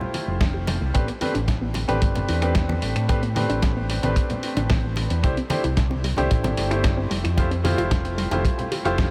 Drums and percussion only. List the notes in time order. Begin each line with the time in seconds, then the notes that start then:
0.01 low conga
0.14 open hi-hat, muted conga
0.41 kick, snare, open hi-hat, high conga
0.67 open hi-hat, muted conga
0.95 kick, closed hi-hat
1.08 closed hi-hat
1.21 open hi-hat, muted conga, high conga
1.35 closed hi-hat
1.48 kick, snare, closed hi-hat, low conga
1.74 open hi-hat, muted conga
1.89 closed hi-hat, high conga
2.02 kick, closed hi-hat
2.15 closed hi-hat, muted conga, low conga
2.29 open hi-hat
2.42 finger snap, closed hi-hat
2.55 kick, snare, closed hi-hat, high conga
2.69 muted conga
2.82 open hi-hat
2.96 finger snap, closed hi-hat
3.09 kick, closed hi-hat, muted conga
3.23 closed hi-hat
3.36 open hi-hat, high conga
3.50 closed hi-hat
3.62 kick, snare, closed hi-hat, muted conga, low conga
3.90 open hi-hat
4.03 closed hi-hat, muted conga, high conga
4.16 kick, closed hi-hat
4.30 closed hi-hat, low conga
4.43 open hi-hat
4.57 closed hi-hat, muted conga
4.70 kick, snare, open hi-hat, high conga
4.96 finger snap, open hi-hat, muted conga
5.10 closed hi-hat
5.24 kick, closed hi-hat
5.37 closed hi-hat
5.50 open hi-hat, muted conga, high conga
5.64 closed hi-hat
5.77 kick, snare, closed hi-hat, low conga
5.91 muted conga
6.04 open hi-hat
6.17 closed hi-hat, high conga
6.31 kick, closed hi-hat
6.44 closed hi-hat, muted conga, low conga
6.57 open hi-hat
6.71 finger snap, closed hi-hat
6.84 kick, snare, closed hi-hat, muted conga, high conga
7.11 open hi-hat
7.25 finger snap, closed hi-hat
7.38 kick, closed hi-hat, muted conga
7.51 closed hi-hat
7.65 open hi-hat, high conga, low conga
7.78 closed hi-hat, muted conga
7.91 kick, snare, closed hi-hat, low conga
8.05 closed hi-hat
8.18 open hi-hat
8.31 closed hi-hat, muted conga, high conga
8.45 kick, closed hi-hat
8.59 closed hi-hat, low conga
8.72 open hi-hat, muted conga
8.85 closed hi-hat
8.98 kick, snare, open hi-hat, high conga